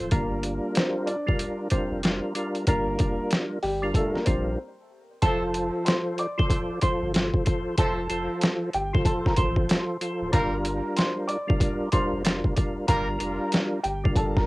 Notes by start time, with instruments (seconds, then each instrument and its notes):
Already playing: tonewheel organ F4 A4 C5
0.00 sub bass D1
0.11 sub bass G1, tonewheel organ G3 D4 F4 A#4, upright piano A#3 A#4, kick, closed hi-hat
0.43 closed hi-hat
0.75 upright piano C4 C5, snare, closed hi-hat
1.06 upright piano D4 D5, closed hi-hat
1.26 tonewheel organ G3 D4 F4 A#4, kick
1.39 closed hi-hat
1.70 tonewheel organ G3 D4 F4 A#4, upright piano C4 C5, kick, closed hi-hat
1.91 sub bass F1
2.03 tonewheel organ G3 D4 F4 A#4, snare, closed hi-hat
2.35 tonewheel organ G3 D4 F4 A#4, closed hi-hat
2.55 closed hi-hat
2.67 sub bass G1, tonewheel organ G3 D4 F4 A#4, upright piano A#3 A#4, kick, closed hi-hat
2.98 sub bass F1, tonewheel organ G3 D4 F4 A#4, kick, closed hi-hat
3.31 snare, closed hi-hat
3.63 sub bass G1, upright piano G3 G4, open hi-hat
3.82 tonewheel organ G3 D4 F4 A#4
3.94 upright piano A3 A4, kick, closed hi-hat
4.15 upright piano A#3 A#4, snare
4.25 sub bass A#1, tonewheel organ G3 D4 F4 A#4, upright piano C4 C5, kick, closed hi-hat
5.22 sub bass F1, tonewheel organ F3 F4 A4 C5, horn section F3 A3 C4 A4, upright piano A4 A5, kick, closed hi-hat
5.54 closed hi-hat
5.85 upright piano C5 C6, snare, closed hi-hat
6.18 upright piano D5 D6, closed hi-hat
6.38 tonewheel organ F3 F4 A4 C5, kick
6.50 kick, closed hi-hat
6.81 tonewheel organ F3 F4 A4 C5, upright piano C5 C6, kick, closed hi-hat
7.02 sub bass G1
7.13 tonewheel organ F3 F4 A4 C5, snare, closed hi-hat
7.34 kick
7.45 tonewheel organ F3 F4 A4 C5, kick, closed hi-hat
7.77 sub bass F1, tonewheel organ F3 F4 A4 C5, horn section F3 A3 C4 A4, upright piano A4 A5, kick, closed hi-hat
8.09 sub bass F1, tonewheel organ F3 F4 A4 C5, closed hi-hat
8.41 snare, closed hi-hat
8.73 sub bass G1, upright piano G4 G5, closed hi-hat
8.93 tonewheel organ F3 F4 A4 C5, kick
9.05 upright piano A4 A5, kick, closed hi-hat
9.26 upright piano A#4 A#5, kick, snare
9.37 sub bass A1, tonewheel organ F3 F4 A4 C5, upright piano C5 C6, kick, closed hi-hat
9.56 kick
9.69 snare, closed hi-hat
10.01 tonewheel organ F3 F4 A4 C5, closed hi-hat
10.21 sub bass D1
10.32 sub bass G1, tonewheel organ G3 D4 F4 A#4, horn section G3 A#3 F4 A#4, upright piano A#4 A#5, kick, closed hi-hat
10.65 closed hi-hat
10.97 upright piano C5 C6, snare, closed hi-hat
11.28 upright piano D5 D6, closed hi-hat
11.47 tonewheel organ G3 D4 F4 A#4, kick
11.60 kick, closed hi-hat
11.92 tonewheel organ G3 D4 F4 A#4, upright piano C5 C6, kick, closed hi-hat
12.13 sub bass F1
12.24 tonewheel organ G3 D4 F4 A#4, snare, closed hi-hat
12.44 kick
12.56 tonewheel organ G3 D4 F4 A#4, kick, closed hi-hat
12.88 sub bass G1, horn section G3 A#3 F4 A#4, tonewheel organ G3 D4 F4 A#4, upright piano A#4 A#5, kick, closed hi-hat
13.19 sub bass F1, tonewheel organ G3 D4 F4 A#4, closed hi-hat
13.52 snare, closed hi-hat
13.83 sub bass G1, upright piano G4 G5, closed hi-hat
14.03 tonewheel organ G3 D4 F4 A#4, kick
14.16 upright piano A4 A5, kick, closed hi-hat
14.36 upright piano A#4 A#5, kick, snare